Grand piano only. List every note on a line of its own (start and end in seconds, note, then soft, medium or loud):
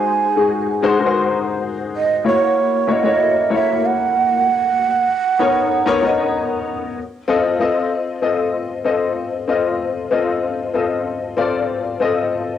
0.00 0.24 G#3 medium
0.00 0.24 D#4 medium
0.00 0.24 F#4 medium
0.00 0.27 C5 medium
0.36 0.68 G#3 medium
0.36 0.68 D#4 medium
0.36 0.68 F#4 medium
0.36 0.68 G#4 medium
0.82 0.94 G#3 loud
0.82 0.94 D#4 medium
0.82 0.94 F#4 loud
0.82 0.94 C5 loud
0.99 1.82 G#3 medium
0.99 1.83 D#4 medium
0.99 1.83 F#4 medium
0.99 1.06 A#4 medium
1.06 1.86 C5 loud
2.24 2.75 A#3 medium
2.24 2.75 E4 medium
2.24 2.76 F#4 medium
2.24 2.76 C#5 medium
2.87 2.98 A#3 medium
2.87 2.98 E4 medium
2.87 2.99 F#4 medium
2.87 2.99 C#5 medium
3.03 3.35 A#3 medium
3.03 3.35 E4 medium
3.03 3.35 F#4 medium
3.03 3.36 C#5 medium
3.50 4.34 A#3 medium
3.50 4.34 E4 medium
3.50 4.34 F#4 medium
3.50 4.34 C#5 medium
5.39 5.70 B3 medium
5.39 5.71 D#4 medium
5.39 5.71 A#4 medium
5.39 5.71 C#5 loud
5.86 5.97 B3 loud
5.86 5.97 D#4 loud
5.86 5.97 A#4 loud
5.86 5.97 C#5 loud
6.02 6.85 B3 medium
6.02 6.85 D#4 medium
6.02 6.86 A#4 medium
6.02 6.86 D#5 loud
7.28 7.49 C4 loud
7.28 7.49 F4 medium
7.28 7.49 A4 medium
7.28 7.49 D#5 loud
7.60 8.01 C4 medium
7.60 8.01 F4 medium
7.60 8.02 A4 medium
7.60 8.02 D#5 loud
8.22 8.64 C4 medium
8.22 8.64 F4 medium
8.22 8.64 A4 medium
8.22 8.64 D#5 medium
8.84 9.27 C4 medium
8.84 9.27 F4 medium
8.84 9.27 A4 medium
8.84 9.27 D#5 medium
9.48 9.90 C4 medium
9.48 9.90 F4 medium
9.48 9.90 A4 medium
9.48 9.90 D#5 medium
10.11 10.53 C4 medium
10.11 10.53 F4 medium
10.11 10.53 A4 medium
10.11 10.53 D#5 medium
10.74 11.16 C4 medium
10.74 11.16 F4 medium
10.74 11.16 A4 medium
10.74 11.16 D#5 medium
11.37 11.79 C4 medium
11.37 11.79 F4 medium
11.37 11.79 A4 medium
11.37 11.79 D5 loud
12.00 12.42 C4 medium
12.00 12.42 F4 medium
12.00 12.42 A4 medium
12.00 12.43 D#5 medium